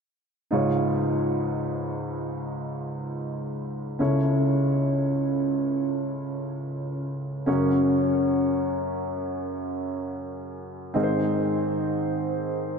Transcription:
0.51 C#2 G#2 D#4 F4 G#4 C#5
3.99 C#2 C#3 C#4 E4 A4 C#5
7.46 F#2 C#3 C#4 F#4 A#4 C#5
10.94 G#2 D#3 C4 D#4 G#4 A#4
11.03 C5

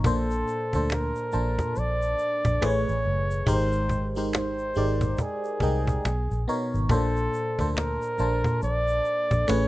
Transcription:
0.04 A#1 A#2 A#3 D4 A4 C5, cajon bass, shaker
0.31 shaker
0.47 cajon slap, shaker
0.73 D2 A#2 A#3 D4 A4 C5, cajon bass, shaker
0.90 A#4, finger snap, cajon slap, shaker
1.16 shaker
1.32 A#1 A#2 A#3 D4 C5 A5, shaker
1.59 A#2, cajon bass, shaker
1.76 A#1 D5, cajon slap, shaker
2.02 shaker
2.19 cajon slap, shaker
2.45 A#1, cajon bass, shaker
2.61 A1 A2 A3 G#4 B4 C5, finger snap, cajon slap, shaker
2.66 C#5
2.89 A1, shaker
3.05 F#1, cajon slap
3.31 shaker
3.46 G#1 G#3 D#4 G4 A#4 C5, cajon bass, shaker
3.51 C5
3.72 shaker
3.89 cajon bass, shaker
4.16 G#3 D#4 G4 A#4 C5, shaker
4.33 C5, finger snap, cajon slap, shaker
4.58 shaker
4.75 G#1 G#3 D#4 G4 A#4 D5, cajon slap, shaker
5.01 cajon bass, shaker
5.18 G#4, cajon bass, shaker
5.44 shaker
5.60 C2 G#3 D#4 A#4 D#5 G5, cajon bass, shaker
5.87 cajon bass, shaker
6.05 B1, finger snap, cajon slap, shaker
6.31 A#1, shaker
6.48 B2 B3 D#4 A#4 C#5, cajon slap
6.74 G#1, shaker
6.89 A#1 A#2 A#3 D4 A4 C5, cajon bass, shaker
7.16 shaker
7.33 cajon slap, shaker
7.59 D2 A#2 A#3 D4 A4 C5, cajon bass, shaker
7.72 A4
7.77 A#4, finger snap, cajon slap, shaker
8.02 shaker
8.18 A#1 A#2 A#3 D4 C5 A5, cajon slap, shaker
8.44 A#2, cajon bass, shaker
8.62 A#1 D5, cajon slap, shaker
8.88 shaker
9.05 cajon slap, shaker
9.31 A#1, cajon bass, shaker
9.47 A1 A2 A3 C#4 G#4 B4 C#5, finger snap, cajon slap, shaker

